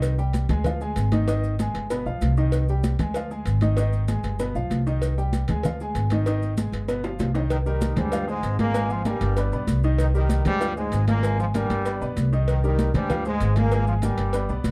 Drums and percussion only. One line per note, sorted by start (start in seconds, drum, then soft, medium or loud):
0.02 cowbell loud
0.02 high conga soft
0.02 maracas medium
0.18 high conga soft
0.18 maracas soft
0.33 cowbell medium
0.33 high conga medium
0.33 maracas medium
0.49 cowbell medium
0.49 high conga soft
0.49 low conga medium
0.49 maracas soft
0.64 cowbell loud
0.64 high conga soft
0.64 low conga medium
0.64 maracas medium
0.81 high conga soft
0.81 maracas soft
0.96 cowbell medium
0.96 high conga soft
0.96 maracas medium
1.12 cowbell medium
1.12 high conga medium
1.12 maracas soft
1.28 cowbell loud
1.28 high conga soft
1.28 maracas medium
1.44 high conga soft
1.44 maracas soft
1.59 cowbell medium
1.59 high conga medium
1.59 maracas medium
1.75 cowbell medium
1.75 high conga soft
1.75 maracas soft
1.90 cowbell loud
1.90 high conga soft
1.90 maracas medium
2.06 high conga soft
2.06 maracas soft
2.21 cowbell medium
2.21 high conga medium
2.21 maracas medium
2.37 high conga soft
2.37 maracas soft
2.52 cowbell loud
2.52 high conga soft
2.52 maracas medium
2.68 high conga soft
2.68 maracas soft
2.84 cowbell medium
2.84 high conga medium
2.84 maracas medium
2.99 cowbell medium
2.99 high conga soft
2.99 low conga medium
2.99 maracas soft
3.14 cowbell loud
3.14 high conga soft
3.14 maracas medium
3.30 high conga soft
3.30 maracas soft
3.46 cowbell medium
3.46 high conga soft
3.46 maracas medium
3.61 cowbell medium
3.61 high conga medium
3.61 maracas soft
3.77 cowbell loud
3.77 high conga soft
3.77 maracas medium
3.93 high conga soft
3.93 maracas soft
4.08 cowbell medium
4.08 high conga medium
4.08 maracas medium
4.24 cowbell medium
4.24 high conga soft
4.24 maracas soft
4.39 cowbell medium
4.39 high conga soft
4.39 maracas medium
4.55 high conga soft
4.55 maracas soft
4.71 cowbell medium
4.71 high conga medium
4.71 maracas medium
4.87 high conga soft
4.87 maracas soft
5.02 cowbell loud
5.02 high conga soft
5.02 maracas medium
5.18 high conga soft
5.18 maracas soft
5.33 cowbell medium
5.33 high conga medium
5.33 maracas medium
5.48 cowbell medium
5.48 high conga soft
5.48 low conga medium
5.48 maracas soft
5.63 cowbell loud
5.63 high conga soft
5.63 low conga medium
5.63 maracas medium
5.80 high conga soft
5.80 maracas soft
5.95 cowbell medium
5.95 high conga soft
5.95 maracas medium
6.10 cowbell medium
6.10 high conga medium
6.10 maracas soft
6.26 cowbell loud
6.26 maracas medium
6.42 high conga soft
6.42 maracas soft
6.57 cowbell medium
6.57 high conga medium
6.57 maracas medium
6.73 cowbell medium
6.73 high conga soft
6.73 maracas soft
6.88 cowbell loud
6.88 high conga soft
6.88 maracas medium
7.04 high bongo loud
7.04 high conga soft
7.04 maracas soft
7.19 cowbell medium
7.19 high bongo medium
7.19 high conga medium
7.19 maracas medium
7.35 low bongo medium
7.35 high conga soft
7.35 maracas soft
7.50 cowbell loud
7.50 high conga soft
7.50 maracas medium
7.66 high conga soft
7.66 maracas soft
7.81 cowbell medium
7.81 high conga medium
7.81 maracas medium
7.97 cowbell medium
7.97 high conga soft
7.97 low conga medium
7.97 maracas soft
8.12 cowbell loud
8.12 high conga soft
8.12 maracas medium
8.27 high conga soft
8.27 maracas soft
8.43 cowbell medium
8.43 high conga soft
8.43 maracas medium
8.59 cowbell medium
8.59 high conga loud
8.59 maracas soft
8.74 cowbell loud
8.74 high conga soft
8.74 maracas medium
8.90 high conga soft
8.90 maracas soft
9.05 cowbell medium
9.05 high conga medium
9.05 maracas medium
9.21 cowbell medium
9.21 high conga soft
9.21 maracas soft
9.37 cowbell loud
9.37 high conga soft
9.37 maracas medium
9.52 high conga soft
9.52 maracas soft
9.67 cowbell medium
9.67 high conga medium
9.67 maracas medium
9.84 maracas soft
9.98 cowbell loud
9.98 high conga soft
9.98 maracas medium
10.14 high conga soft
10.14 maracas soft
10.29 cowbell medium
10.29 high conga medium
10.29 maracas medium
10.45 cowbell medium
10.45 high conga soft
10.45 low conga medium
10.45 maracas soft
10.61 cowbell loud
10.61 high conga soft
10.61 maracas medium
10.77 high conga soft
10.77 maracas soft
10.92 cowbell medium
10.92 high conga soft
10.92 maracas medium
11.08 cowbell medium
11.08 high conga medium
11.08 maracas soft
11.23 cowbell loud
11.23 high conga soft
11.23 maracas medium
11.39 high conga soft
11.39 maracas soft
11.54 cowbell medium
11.54 high conga medium
11.54 maracas medium
11.70 cowbell medium
11.70 high conga soft
11.70 maracas soft
11.85 cowbell loud
11.85 high conga soft
11.85 maracas medium
12.02 high conga soft
12.02 maracas soft
12.17 cowbell medium
12.17 high conga medium
12.17 maracas medium
12.33 high conga soft
12.33 maracas soft
12.48 cowbell loud
12.48 high conga soft
12.48 maracas medium
12.64 high conga soft
12.64 maracas soft
12.79 cowbell medium
12.79 high conga medium
12.79 maracas medium
12.94 cowbell medium
12.94 high conga soft
12.94 low conga medium
12.94 maracas soft
13.10 cowbell loud
13.10 high conga soft
13.10 low conga medium
13.10 maracas medium
13.25 high conga soft
13.25 maracas soft
13.40 cowbell medium
13.40 high conga soft
13.40 maracas medium
13.56 cowbell medium
13.56 high conga medium
13.56 maracas soft
13.72 cowbell loud
13.72 maracas medium
13.87 high conga soft
13.87 maracas soft
14.02 cowbell medium
14.02 high conga medium
14.02 maracas medium
14.18 cowbell medium
14.18 high conga soft
14.18 maracas soft
14.33 cowbell loud
14.33 high conga soft
14.33 maracas medium
14.49 high conga soft
14.49 maracas soft
14.64 cowbell medium
14.64 high conga medium
14.64 maracas medium